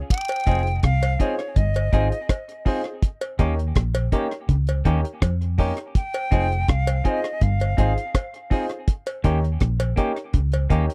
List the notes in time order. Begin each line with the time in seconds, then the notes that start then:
0.10 G5, kick, closed hi-hat, vibraslap
0.29 closed hi-hat, cowbell
0.46 F1 F2 C4 D#4 F4 G#4 C5, kick, closed hi-hat
0.67 closed hi-hat
0.83 C2 C3 F5, kick, cross-stick, closed hi-hat
1.03 closed hi-hat, cowbell
1.19 C4 D#4 F4 G#4 C5 C#5, kick, closed hi-hat
1.39 closed hi-hat
1.56 G1 G2 D#5, kick, closed hi-hat
1.74 closed hi-hat, cowbell
1.92 G#1 G#2 C4 D#4 F4 G#4 C5, kick, closed hi-hat
2.12 muted clean electric guitar stroke, closed hi-hat
2.29 kick, cross-stick, closed hi-hat, cowbell
2.49 closed hi-hat
2.65 C4 D#4 F4 G#4 C5, kick, open hi-hat
2.84 G#4 C5, closed hi-hat
3.02 kick, closed hi-hat
3.21 closed hi-hat, cowbell
3.39 D#2 D#3 A#3 C#4 D#4 G4 A#4 C#5, kick, closed hi-hat
3.59 closed hi-hat
3.75 A#1 A#2, kick, cross-stick, closed hi-hat
3.95 closed hi-hat, cowbell
4.12 A#3 C#4 D#4 G4 A#4 C#5, kick, closed hi-hat
4.32 closed hi-hat
4.49 C#2 C#3, kick, closed hi-hat
4.67 closed hi-hat, cowbell
4.85 D#2 D#3 A#3 C#4 D#4 G4 A#4 C#5, kick, closed hi-hat
5.05 muted clean electric guitar stroke, closed hi-hat
5.22 F2 F3, kick, cross-stick, closed hi-hat, cowbell
5.42 closed hi-hat
5.58 A#3 C#4 D#4 G4 A#4 C#5, kick, open hi-hat
5.77 A#4 C#5, muted clean electric guitar stroke, closed hi-hat
5.95 G5, kick, closed hi-hat
6.14 closed hi-hat, cowbell
6.31 F1 F2 C4 D#4 F4 G#4 C5, kick, closed hi-hat
6.52 closed hi-hat
6.68 C2 C3 F5, kick, cross-stick, closed hi-hat
6.87 closed hi-hat, cowbell
7.04 C4 D#4 F4 G#4 C5 D#5, kick, closed hi-hat
7.24 cross-stick, closed hi-hat
7.41 G1 G2 F5, kick, closed hi-hat
7.60 closed hi-hat, cowbell
7.77 G#1 G#2 C4 D#4 F4 G#4 C5, kick, closed hi-hat
7.96 muted clean electric guitar stroke, closed hi-hat
8.15 kick, cross-stick, closed hi-hat, cowbell
8.34 closed hi-hat
8.50 C4 D#4 F4 G#4 C5, kick, open hi-hat
8.69 G#4 C5, closed hi-hat
8.88 kick, closed hi-hat
9.06 closed hi-hat, cowbell
9.24 D#2 D#3 A#3 C#4 D#4 G4 A#4 C#5, kick, closed hi-hat
9.44 closed hi-hat
9.60 A#1 A#2, kick, cross-stick, closed hi-hat
9.80 closed hi-hat, cowbell
9.96 A#3 C#4 D#4 G4 A#4 C#5, kick, closed hi-hat
10.16 closed hi-hat
10.34 C#2 C#3, kick, closed hi-hat
10.52 closed hi-hat, cowbell
10.70 D#2 D#3 A#3 C#4 D#4 G4 A#4 C#5, kick, closed hi-hat
10.90 muted clean electric guitar stroke, closed hi-hat